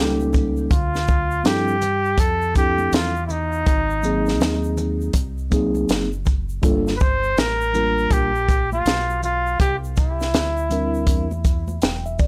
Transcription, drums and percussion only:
0.20 shaker soft
0.33 kick medium
0.33 low conga medium
0.33 shaker soft
0.57 shaker soft
0.71 kick loud
0.71 closed hi-hat medium
0.71 shaker medium
0.95 snare soft
0.95 shaker soft
1.07 kick medium
1.07 shaker soft
1.31 shaker soft
1.45 snare loud
1.45 closed hi-hat medium
1.45 low conga medium
1.45 shaker medium
1.68 shaker medium
1.82 closed hi-hat soft
1.82 low conga medium
1.82 shaker soft
2.05 shaker soft
2.18 kick medium
2.18 closed hi-hat medium
2.18 shaker medium
2.42 shaker soft
2.55 kick medium
2.55 closed hi-hat medium
2.55 shaker medium
2.55 shaker soft
2.78 high conga medium
2.78 shaker soft
2.92 snare loud
2.92 closed hi-hat medium
2.92 shaker medium
3.16 shaker soft
3.29 low conga medium
3.29 shaker soft
3.52 shaker soft
3.66 kick loud
3.66 closed hi-hat medium
3.66 shaker medium
3.90 shaker soft
4.02 shaker soft
4.02 shaker medium
4.26 snare soft
4.26 shaker soft
4.40 snare loud
4.40 closed hi-hat medium
4.40 low conga medium
4.40 shaker medium
4.63 shaker medium
4.77 low conga medium
4.77 shaker soft
5.01 shaker soft
5.13 kick medium
5.13 closed hi-hat medium
5.13 shaker medium
5.38 shaker soft
5.52 kick medium
5.52 closed hi-hat soft
5.52 shaker medium
5.52 shaker soft
5.75 high conga medium
5.75 shaker soft
5.89 snare loud
5.89 closed hi-hat medium
5.89 shaker medium
6.12 shaker soft
6.25 kick medium
6.25 low conga medium
6.25 shaker soft
6.25 shaker medium
6.49 shaker soft
6.63 kick loud
6.63 closed hi-hat medium
6.63 shaker medium
6.87 snare soft
6.87 shaker medium
6.99 kick loud
6.99 shaker soft
7.23 shaker soft
7.37 snare loud
7.37 closed hi-hat medium
7.37 low conga medium
7.37 shaker medium
7.61 shaker medium
7.74 low conga medium
7.74 shaker soft
7.98 shaker soft
8.11 kick medium
8.11 closed hi-hat loud
8.11 shaker medium
8.35 shaker soft
8.49 kick medium
8.49 closed hi-hat medium
8.49 shaker medium
8.49 shaker soft
8.72 high conga medium
8.72 shaker soft
8.86 snare medium
8.86 closed hi-hat medium
8.86 shaker medium
9.10 shaker soft
9.23 low conga medium
9.23 shaker soft
9.46 shaker soft
9.60 kick loud
9.60 closed hi-hat medium
9.60 shaker medium
9.84 shaker soft
9.96 kick medium
9.96 shaker soft
9.96 shaker medium
10.20 snare soft
10.20 shaker soft
10.34 snare loud
10.34 closed hi-hat medium
10.34 low conga medium
10.34 shaker medium
10.57 shaker medium
10.71 closed hi-hat soft
10.71 high conga soft
10.71 low conga medium
10.71 shaker soft
10.94 shaker soft
11.07 kick medium
11.07 closed hi-hat medium
11.07 high conga soft
11.07 shaker medium
11.31 high conga medium
11.31 shaker soft
11.45 kick medium
11.45 closed hi-hat medium
11.45 shaker medium
11.45 shaker soft
11.68 high conga medium
11.68 shaker soft
11.82 snare loud
11.82 closed hi-hat medium
11.82 shaker medium
12.06 shaker soft
12.19 kick medium
12.19 low conga medium
12.19 shaker soft

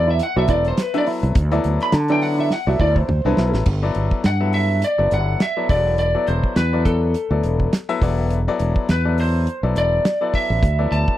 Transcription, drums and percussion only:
0.19 closed hi-hat medium
0.48 kick medium
0.48 closed hi-hat medium
0.65 closed hi-hat soft
0.77 snare loud
0.77 closed hi-hat medium
0.94 closed hi-hat soft
1.06 open hi-hat medium
1.23 closed hi-hat soft
1.35 kick loud
1.35 closed hi-hat medium
1.52 closed hi-hat soft
1.64 closed hi-hat medium
1.80 snare soft
1.80 closed hi-hat soft
1.92 snare loud
1.92 closed hi-hat medium
2.08 closed hi-hat soft
2.21 snare soft
2.21 open hi-hat medium
2.50 snare medium
2.80 kick medium
2.96 kick medium
3.09 mid tom medium
3.37 snare medium
3.54 snare medium
3.66 kick loud
3.66 crash medium
3.95 closed hi-hat medium
4.11 kick medium
4.24 snare loud
4.24 closed hi-hat medium
4.53 open hi-hat medium
4.82 closed hi-hat medium
5.11 closed hi-hat medium
5.40 snare loud
5.40 closed hi-hat medium
5.69 kick medium
5.69 open hi-hat medium
5.98 closed hi-hat medium
6.27 closed hi-hat medium
6.43 kick medium
6.56 snare medium
6.56 closed hi-hat medium
6.85 kick medium
6.85 closed hi-hat medium
7.14 closed hi-hat medium
7.43 closed hi-hat medium
7.60 kick medium
7.73 snare loud
7.73 closed hi-hat medium
8.02 kick medium
8.02 open hi-hat medium
8.30 closed hi-hat medium
8.59 closed hi-hat medium
8.76 kick medium
8.89 snare medium
8.89 closed hi-hat medium
9.18 open hi-hat medium
9.47 closed hi-hat medium
9.76 closed hi-hat medium
10.05 snare loud
10.05 closed hi-hat medium
10.34 kick medium
10.34 open hi-hat medium
10.63 kick loud
10.63 closed hi-hat medium
10.92 closed hi-hat medium
11.08 kick medium

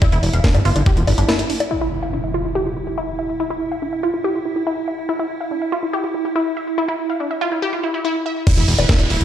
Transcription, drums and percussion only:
0.02 kick loud
0.02 closed hi-hat medium
0.02 high bongo medium
0.12 closed hi-hat medium
0.23 open hi-hat loud
0.23 high bongo soft
0.33 closed hi-hat medium
0.44 kick loud
0.44 snare loud
0.44 closed hi-hat medium
0.55 closed hi-hat medium
0.55 high bongo medium
0.65 open hi-hat medium
0.76 closed hi-hat medium
0.76 high bongo soft
0.86 kick loud
0.86 closed hi-hat medium
0.97 closed hi-hat medium
1.07 open hi-hat loud
1.07 high bongo medium
1.18 closed hi-hat medium
1.29 snare loud
1.29 closed hi-hat medium
1.29 high bongo soft
1.39 closed hi-hat medium
1.50 open hi-hat medium
1.60 closed hi-hat medium
1.60 high bongo medium
8.47 kick loud
8.47 closed hi-hat medium
8.47 crash loud
8.47 high bongo soft
8.57 closed hi-hat medium
8.68 open hi-hat loud
8.79 closed hi-hat medium
8.79 high bongo medium
8.89 kick loud
8.89 snare loud
8.89 closed hi-hat medium
9.00 closed hi-hat medium
9.00 high bongo soft
9.10 open hi-hat medium
9.21 closed hi-hat medium

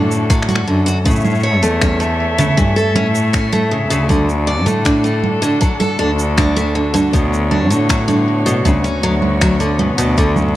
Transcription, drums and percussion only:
0.11 shaker medium
0.30 finger snap soft
0.30 kick loud
0.30 shaker medium
0.42 finger snap medium
0.49 low conga medium
0.49 shaker soft
0.56 finger snap medium
0.88 shaker medium
1.06 kick loud
1.06 shaker medium
1.11 shaker soft
1.16 shaker soft
1.20 shaker soft
1.25 low conga medium
1.25 shaker soft
1.30 shaker soft
1.35 shaker soft
1.40 shaker soft
1.63 shaker medium
1.81 finger snap medium
1.81 kick loud
1.81 low conga medium
1.81 shaker medium
2.01 shaker soft
2.39 low conga medium
2.39 shaker medium
2.58 kick medium
2.58 shaker medium
2.78 shaker soft
2.95 low conga medium
3.15 shaker medium
3.34 finger snap medium
3.34 kick loud
3.34 shaker medium
3.53 low conga medium
3.53 shaker soft
3.91 shaker medium
4.10 kick loud
4.10 low conga medium
4.10 shaker medium
4.29 shaker soft
4.67 low conga medium
4.67 shaker medium
4.86 finger snap medium
4.86 kick loud
4.86 shaker medium
5.05 shaker soft
5.24 low conga medium
5.43 shaker medium
5.62 kick medium
5.62 shaker soft
5.81 low conga medium
5.81 shaker soft
6.19 shaker medium
6.38 finger snap medium
6.38 kick loud
6.38 low conga medium
6.38 shaker soft
6.57 shaker soft
6.95 low conga medium
6.95 shaker medium
7.14 kick medium
7.14 shaker soft
7.34 shaker soft
7.52 low conga medium
7.71 shaker medium
7.90 finger snap medium
7.90 kick medium
7.90 shaker medium
8.09 low conga medium
8.09 shaker soft
8.47 shaker medium
8.66 kick medium
8.66 low conga medium
8.66 shaker soft
8.85 shaker soft
9.22 low conga medium
9.41 finger snap medium
9.41 kick medium
9.41 shaker soft
9.61 shaker soft
9.79 low conga medium
9.99 shaker medium
10.18 kick medium
10.18 shaker soft
10.36 low conga medium
10.36 shaker soft
10.42 low conga medium
10.49 low conga medium

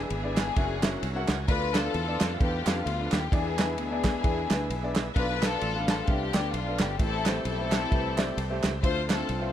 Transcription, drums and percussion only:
0.10 ride medium
0.37 snare loud
0.37 clap loud
0.37 ride medium
0.56 kick loud
0.56 ride medium
0.83 snare loud
0.83 clap loud
0.83 ride medium
1.03 ride medium
1.28 snare loud
1.28 clap loud
1.28 ride medium
1.48 kick loud
1.48 ride medium
1.75 snare loud
1.75 clap loud
1.75 ride medium
1.94 ride medium
2.21 snare loud
2.21 clap loud
2.21 ride medium
2.40 kick loud
2.40 ride medium
2.67 snare loud
2.67 clap loud
2.67 ride medium
2.87 ride medium
3.12 snare loud
3.12 clap loud
3.12 ride medium
3.32 kick loud
3.32 ride medium
3.59 snare loud
3.59 clap loud
3.59 ride medium
3.78 ride medium
4.04 kick loud
4.04 snare loud
4.04 clap medium
4.04 ride medium
4.24 kick loud
4.24 ride medium
4.50 snare loud
4.50 clap loud
4.50 ride medium
4.70 ride medium
4.96 snare loud
4.96 clap loud
4.96 ride medium
5.16 kick loud
5.16 ride medium
5.42 snare loud
5.42 clap loud
5.42 ride medium
5.61 ride medium
5.88 snare loud
5.88 clap loud
5.88 ride medium
6.07 kick loud
6.07 ride medium
6.34 snare loud
6.34 clap loud
6.34 ride medium
6.54 ride medium
6.79 snare loud
6.79 clap loud
6.79 ride medium
6.99 kick loud
6.99 ride medium
7.26 snare loud
7.26 clap loud
7.26 ride medium
7.45 ride medium
7.72 snare loud
7.72 clap loud
7.72 ride medium
7.92 kick loud
7.92 ride medium
8.18 snare loud
8.18 clap loud
8.18 ride medium
8.38 ride medium
8.64 snare loud
8.64 clap loud
8.64 ride medium
8.83 kick loud
8.83 ride medium
9.10 snare loud
9.10 clap loud
9.10 ride medium
9.29 ride medium

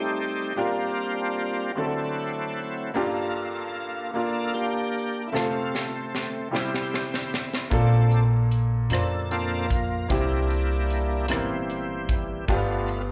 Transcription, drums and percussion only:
5.35 snare soft
5.75 snare soft
6.15 snare medium
6.55 snare medium
6.74 snare medium
6.94 snare medium
7.14 snare medium
7.34 snare medium
7.54 snare medium
7.71 kick medium
7.71 closed hi-hat medium
8.12 closed hi-hat soft
8.51 closed hi-hat medium
8.90 cross-stick medium
8.90 closed hi-hat medium
9.31 closed hi-hat soft
9.70 kick medium
9.70 closed hi-hat medium
10.10 kick medium
10.10 closed hi-hat medium
10.51 closed hi-hat soft
10.90 closed hi-hat medium
11.28 cross-stick medium
11.28 closed hi-hat medium
11.70 closed hi-hat soft
12.09 kick medium
12.09 closed hi-hat medium
12.48 kick medium
12.48 closed hi-hat medium
12.88 closed hi-hat soft

